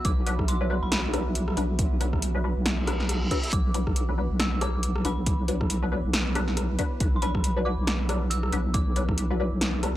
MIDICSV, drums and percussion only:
0, 0, Header, 1, 2, 480
1, 0, Start_track
1, 0, Key_signature, 2, "minor"
1, 0, Tempo, 434783
1, 53, Time_signature, 4, 2, 24, 8
1, 11005, End_track
2, 0, Start_track
2, 0, Title_t, "Drums"
2, 53, Note_on_c, 9, 42, 77
2, 54, Note_on_c, 9, 36, 114
2, 163, Note_off_c, 9, 42, 0
2, 165, Note_off_c, 9, 36, 0
2, 293, Note_on_c, 9, 42, 52
2, 403, Note_off_c, 9, 42, 0
2, 431, Note_on_c, 9, 37, 55
2, 432, Note_on_c, 9, 36, 59
2, 532, Note_on_c, 9, 42, 83
2, 541, Note_off_c, 9, 37, 0
2, 543, Note_off_c, 9, 36, 0
2, 642, Note_off_c, 9, 42, 0
2, 1013, Note_on_c, 9, 38, 118
2, 1013, Note_on_c, 9, 42, 83
2, 1123, Note_off_c, 9, 38, 0
2, 1123, Note_off_c, 9, 42, 0
2, 1253, Note_on_c, 9, 37, 83
2, 1253, Note_on_c, 9, 42, 53
2, 1364, Note_off_c, 9, 37, 0
2, 1364, Note_off_c, 9, 42, 0
2, 1493, Note_on_c, 9, 42, 79
2, 1604, Note_off_c, 9, 42, 0
2, 1632, Note_on_c, 9, 37, 61
2, 1734, Note_on_c, 9, 42, 52
2, 1742, Note_off_c, 9, 37, 0
2, 1844, Note_off_c, 9, 42, 0
2, 1974, Note_on_c, 9, 42, 83
2, 1975, Note_on_c, 9, 36, 114
2, 2084, Note_off_c, 9, 42, 0
2, 2085, Note_off_c, 9, 36, 0
2, 2215, Note_on_c, 9, 42, 55
2, 2326, Note_off_c, 9, 42, 0
2, 2353, Note_on_c, 9, 36, 60
2, 2353, Note_on_c, 9, 37, 55
2, 2454, Note_on_c, 9, 42, 85
2, 2463, Note_off_c, 9, 36, 0
2, 2463, Note_off_c, 9, 37, 0
2, 2565, Note_off_c, 9, 42, 0
2, 2933, Note_on_c, 9, 38, 123
2, 2933, Note_on_c, 9, 42, 82
2, 3043, Note_off_c, 9, 38, 0
2, 3043, Note_off_c, 9, 42, 0
2, 3173, Note_on_c, 9, 37, 85
2, 3173, Note_on_c, 9, 42, 55
2, 3284, Note_off_c, 9, 37, 0
2, 3284, Note_off_c, 9, 42, 0
2, 3312, Note_on_c, 9, 38, 37
2, 3413, Note_on_c, 9, 37, 67
2, 3413, Note_on_c, 9, 42, 85
2, 3423, Note_off_c, 9, 38, 0
2, 3524, Note_off_c, 9, 37, 0
2, 3524, Note_off_c, 9, 42, 0
2, 3654, Note_on_c, 9, 42, 57
2, 3655, Note_on_c, 9, 36, 58
2, 3765, Note_off_c, 9, 36, 0
2, 3765, Note_off_c, 9, 42, 0
2, 3793, Note_on_c, 9, 42, 37
2, 3895, Note_off_c, 9, 42, 0
2, 3895, Note_on_c, 9, 36, 118
2, 3895, Note_on_c, 9, 42, 83
2, 4005, Note_off_c, 9, 36, 0
2, 4005, Note_off_c, 9, 42, 0
2, 4133, Note_on_c, 9, 42, 56
2, 4244, Note_off_c, 9, 42, 0
2, 4272, Note_on_c, 9, 36, 62
2, 4272, Note_on_c, 9, 37, 55
2, 4372, Note_on_c, 9, 42, 87
2, 4382, Note_off_c, 9, 37, 0
2, 4383, Note_off_c, 9, 36, 0
2, 4483, Note_off_c, 9, 42, 0
2, 4853, Note_on_c, 9, 38, 126
2, 4853, Note_on_c, 9, 42, 90
2, 4963, Note_off_c, 9, 38, 0
2, 4963, Note_off_c, 9, 42, 0
2, 5093, Note_on_c, 9, 37, 83
2, 5093, Note_on_c, 9, 42, 58
2, 5203, Note_off_c, 9, 37, 0
2, 5203, Note_off_c, 9, 42, 0
2, 5332, Note_on_c, 9, 42, 85
2, 5442, Note_off_c, 9, 42, 0
2, 5471, Note_on_c, 9, 37, 65
2, 5573, Note_on_c, 9, 42, 56
2, 5582, Note_off_c, 9, 37, 0
2, 5683, Note_off_c, 9, 42, 0
2, 5812, Note_on_c, 9, 42, 87
2, 5814, Note_on_c, 9, 36, 125
2, 5922, Note_off_c, 9, 42, 0
2, 5924, Note_off_c, 9, 36, 0
2, 6052, Note_on_c, 9, 42, 58
2, 6163, Note_off_c, 9, 42, 0
2, 6191, Note_on_c, 9, 37, 54
2, 6192, Note_on_c, 9, 36, 67
2, 6292, Note_on_c, 9, 42, 86
2, 6301, Note_off_c, 9, 37, 0
2, 6302, Note_off_c, 9, 36, 0
2, 6402, Note_off_c, 9, 42, 0
2, 6773, Note_on_c, 9, 38, 127
2, 6773, Note_on_c, 9, 42, 86
2, 6883, Note_off_c, 9, 38, 0
2, 6883, Note_off_c, 9, 42, 0
2, 7014, Note_on_c, 9, 37, 85
2, 7014, Note_on_c, 9, 42, 57
2, 7124, Note_off_c, 9, 37, 0
2, 7124, Note_off_c, 9, 42, 0
2, 7150, Note_on_c, 9, 38, 40
2, 7252, Note_on_c, 9, 37, 65
2, 7252, Note_on_c, 9, 42, 84
2, 7261, Note_off_c, 9, 38, 0
2, 7363, Note_off_c, 9, 37, 0
2, 7363, Note_off_c, 9, 42, 0
2, 7492, Note_on_c, 9, 42, 56
2, 7494, Note_on_c, 9, 36, 65
2, 7602, Note_off_c, 9, 42, 0
2, 7604, Note_off_c, 9, 36, 0
2, 7732, Note_on_c, 9, 42, 81
2, 7734, Note_on_c, 9, 36, 126
2, 7842, Note_off_c, 9, 42, 0
2, 7844, Note_off_c, 9, 36, 0
2, 7972, Note_on_c, 9, 42, 55
2, 8082, Note_off_c, 9, 42, 0
2, 8111, Note_on_c, 9, 37, 52
2, 8112, Note_on_c, 9, 36, 67
2, 8213, Note_on_c, 9, 42, 85
2, 8221, Note_off_c, 9, 37, 0
2, 8222, Note_off_c, 9, 36, 0
2, 8323, Note_off_c, 9, 42, 0
2, 8692, Note_on_c, 9, 38, 127
2, 8692, Note_on_c, 9, 42, 83
2, 8803, Note_off_c, 9, 38, 0
2, 8803, Note_off_c, 9, 42, 0
2, 8932, Note_on_c, 9, 37, 80
2, 8932, Note_on_c, 9, 42, 56
2, 9042, Note_off_c, 9, 37, 0
2, 9042, Note_off_c, 9, 42, 0
2, 9172, Note_on_c, 9, 42, 82
2, 9282, Note_off_c, 9, 42, 0
2, 9309, Note_on_c, 9, 37, 60
2, 9412, Note_on_c, 9, 42, 56
2, 9420, Note_off_c, 9, 37, 0
2, 9522, Note_off_c, 9, 42, 0
2, 9651, Note_on_c, 9, 42, 81
2, 9653, Note_on_c, 9, 36, 125
2, 9761, Note_off_c, 9, 42, 0
2, 9764, Note_off_c, 9, 36, 0
2, 9892, Note_on_c, 9, 42, 54
2, 10003, Note_off_c, 9, 42, 0
2, 10030, Note_on_c, 9, 37, 51
2, 10031, Note_on_c, 9, 36, 66
2, 10131, Note_on_c, 9, 42, 82
2, 10141, Note_off_c, 9, 37, 0
2, 10142, Note_off_c, 9, 36, 0
2, 10242, Note_off_c, 9, 42, 0
2, 10612, Note_on_c, 9, 38, 127
2, 10612, Note_on_c, 9, 42, 81
2, 10723, Note_off_c, 9, 38, 0
2, 10723, Note_off_c, 9, 42, 0
2, 10852, Note_on_c, 9, 37, 78
2, 10852, Note_on_c, 9, 42, 53
2, 10962, Note_off_c, 9, 37, 0
2, 10962, Note_off_c, 9, 42, 0
2, 11005, End_track
0, 0, End_of_file